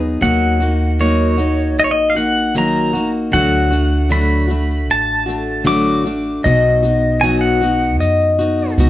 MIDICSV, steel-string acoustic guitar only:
0, 0, Header, 1, 2, 480
1, 0, Start_track
1, 0, Tempo, 777807
1, 135, Time_signature, 4, 2, 24, 8
1, 5490, End_track
2, 0, Start_track
2, 0, Title_t, "Steel-string acoustic guitar"
2, 0, Program_c, 0, 25
2, 0, Note_on_c, 0, 54, 40
2, 0, Note_on_c, 0, 59, 46
2, 0, Note_on_c, 0, 63, 46
2, 0, Note_on_c, 0, 68, 46
2, 124, Note_off_c, 0, 54, 0
2, 126, Note_on_c, 0, 51, 61
2, 129, Note_off_c, 0, 59, 0
2, 129, Note_off_c, 0, 63, 0
2, 130, Note_off_c, 0, 68, 0
2, 131, Note_on_c, 0, 54, 69
2, 132, Note_on_c, 0, 58, 64
2, 136, Note_on_c, 0, 66, 70
2, 137, Note_on_c, 0, 63, 72
2, 363, Note_off_c, 0, 66, 0
2, 370, Note_off_c, 0, 51, 0
2, 371, Note_on_c, 0, 66, 42
2, 373, Note_off_c, 0, 54, 0
2, 373, Note_off_c, 0, 58, 0
2, 373, Note_off_c, 0, 63, 0
2, 381, Note_on_c, 0, 63, 42
2, 391, Note_on_c, 0, 58, 38
2, 610, Note_on_c, 0, 51, 68
2, 611, Note_off_c, 0, 58, 0
2, 613, Note_off_c, 0, 66, 0
2, 614, Note_off_c, 0, 63, 0
2, 616, Note_on_c, 0, 54, 74
2, 618, Note_on_c, 0, 58, 74
2, 621, Note_on_c, 0, 63, 74
2, 623, Note_on_c, 0, 66, 73
2, 841, Note_off_c, 0, 66, 0
2, 848, Note_on_c, 0, 66, 47
2, 852, Note_off_c, 0, 51, 0
2, 852, Note_off_c, 0, 63, 0
2, 855, Note_off_c, 0, 54, 0
2, 856, Note_off_c, 0, 58, 0
2, 859, Note_on_c, 0, 63, 45
2, 869, Note_on_c, 0, 58, 36
2, 1322, Note_off_c, 0, 66, 0
2, 1325, Note_on_c, 0, 66, 45
2, 1328, Note_off_c, 0, 63, 0
2, 1335, Note_off_c, 0, 58, 0
2, 1336, Note_on_c, 0, 63, 41
2, 1343, Note_on_c, 0, 58, 39
2, 1570, Note_off_c, 0, 66, 0
2, 1571, Note_off_c, 0, 58, 0
2, 1572, Note_on_c, 0, 51, 69
2, 1573, Note_off_c, 0, 63, 0
2, 1575, Note_on_c, 0, 54, 73
2, 1579, Note_on_c, 0, 58, 74
2, 1580, Note_on_c, 0, 63, 70
2, 1585, Note_on_c, 0, 66, 78
2, 1803, Note_off_c, 0, 66, 0
2, 1810, Note_on_c, 0, 66, 52
2, 1813, Note_off_c, 0, 51, 0
2, 1815, Note_off_c, 0, 54, 0
2, 1816, Note_off_c, 0, 63, 0
2, 1817, Note_off_c, 0, 58, 0
2, 1823, Note_on_c, 0, 63, 46
2, 1830, Note_on_c, 0, 58, 43
2, 2047, Note_on_c, 0, 50, 65
2, 2051, Note_off_c, 0, 58, 0
2, 2051, Note_on_c, 0, 54, 67
2, 2053, Note_off_c, 0, 66, 0
2, 2054, Note_on_c, 0, 57, 72
2, 2057, Note_off_c, 0, 63, 0
2, 2060, Note_on_c, 0, 62, 68
2, 2061, Note_on_c, 0, 66, 74
2, 2280, Note_off_c, 0, 66, 0
2, 2287, Note_on_c, 0, 66, 50
2, 2290, Note_off_c, 0, 62, 0
2, 2291, Note_off_c, 0, 50, 0
2, 2293, Note_off_c, 0, 54, 0
2, 2294, Note_off_c, 0, 57, 0
2, 2298, Note_on_c, 0, 62, 45
2, 2307, Note_on_c, 0, 57, 40
2, 2525, Note_off_c, 0, 57, 0
2, 2525, Note_on_c, 0, 50, 67
2, 2527, Note_off_c, 0, 62, 0
2, 2529, Note_on_c, 0, 54, 71
2, 2531, Note_off_c, 0, 66, 0
2, 2532, Note_on_c, 0, 57, 69
2, 2535, Note_on_c, 0, 62, 77
2, 2540, Note_on_c, 0, 66, 79
2, 2756, Note_off_c, 0, 66, 0
2, 2763, Note_on_c, 0, 66, 44
2, 2768, Note_off_c, 0, 62, 0
2, 2770, Note_off_c, 0, 50, 0
2, 2772, Note_off_c, 0, 54, 0
2, 2773, Note_off_c, 0, 57, 0
2, 2776, Note_on_c, 0, 62, 42
2, 2783, Note_on_c, 0, 57, 43
2, 3244, Note_off_c, 0, 66, 0
2, 3246, Note_on_c, 0, 66, 51
2, 3247, Note_off_c, 0, 62, 0
2, 3254, Note_on_c, 0, 62, 44
2, 3255, Note_off_c, 0, 57, 0
2, 3262, Note_on_c, 0, 57, 38
2, 3479, Note_off_c, 0, 57, 0
2, 3482, Note_on_c, 0, 50, 75
2, 3485, Note_off_c, 0, 62, 0
2, 3486, Note_on_c, 0, 54, 75
2, 3486, Note_on_c, 0, 57, 81
2, 3487, Note_off_c, 0, 66, 0
2, 3492, Note_on_c, 0, 62, 73
2, 3494, Note_on_c, 0, 66, 84
2, 3720, Note_off_c, 0, 66, 0
2, 3727, Note_on_c, 0, 66, 45
2, 3728, Note_off_c, 0, 50, 0
2, 3730, Note_off_c, 0, 54, 0
2, 3731, Note_off_c, 0, 57, 0
2, 3731, Note_off_c, 0, 62, 0
2, 3738, Note_on_c, 0, 62, 49
2, 3746, Note_on_c, 0, 57, 43
2, 3971, Note_off_c, 0, 66, 0
2, 3973, Note_on_c, 0, 47, 68
2, 3976, Note_off_c, 0, 62, 0
2, 3978, Note_off_c, 0, 57, 0
2, 3978, Note_on_c, 0, 54, 64
2, 3981, Note_on_c, 0, 59, 76
2, 3981, Note_on_c, 0, 63, 76
2, 3989, Note_on_c, 0, 66, 69
2, 4206, Note_off_c, 0, 66, 0
2, 4214, Note_off_c, 0, 47, 0
2, 4214, Note_on_c, 0, 66, 45
2, 4216, Note_off_c, 0, 63, 0
2, 4217, Note_off_c, 0, 54, 0
2, 4218, Note_off_c, 0, 59, 0
2, 4224, Note_on_c, 0, 63, 43
2, 4230, Note_on_c, 0, 59, 39
2, 4454, Note_off_c, 0, 66, 0
2, 4455, Note_off_c, 0, 59, 0
2, 4458, Note_on_c, 0, 47, 69
2, 4459, Note_off_c, 0, 63, 0
2, 4462, Note_on_c, 0, 59, 78
2, 4463, Note_on_c, 0, 54, 68
2, 4467, Note_on_c, 0, 63, 71
2, 4470, Note_on_c, 0, 66, 80
2, 4687, Note_off_c, 0, 66, 0
2, 4695, Note_on_c, 0, 66, 50
2, 4697, Note_off_c, 0, 47, 0
2, 4699, Note_off_c, 0, 54, 0
2, 4699, Note_off_c, 0, 59, 0
2, 4699, Note_off_c, 0, 63, 0
2, 4707, Note_on_c, 0, 63, 41
2, 4712, Note_on_c, 0, 59, 39
2, 5174, Note_off_c, 0, 66, 0
2, 5177, Note_on_c, 0, 66, 51
2, 5184, Note_off_c, 0, 59, 0
2, 5184, Note_off_c, 0, 63, 0
2, 5186, Note_on_c, 0, 63, 43
2, 5196, Note_on_c, 0, 59, 37
2, 5416, Note_off_c, 0, 66, 0
2, 5419, Note_off_c, 0, 59, 0
2, 5419, Note_on_c, 0, 47, 66
2, 5421, Note_off_c, 0, 63, 0
2, 5423, Note_on_c, 0, 54, 74
2, 5427, Note_on_c, 0, 59, 73
2, 5429, Note_on_c, 0, 63, 76
2, 5432, Note_on_c, 0, 66, 81
2, 5490, Note_off_c, 0, 47, 0
2, 5490, Note_off_c, 0, 54, 0
2, 5490, Note_off_c, 0, 59, 0
2, 5490, Note_off_c, 0, 63, 0
2, 5490, Note_off_c, 0, 66, 0
2, 5490, End_track
0, 0, End_of_file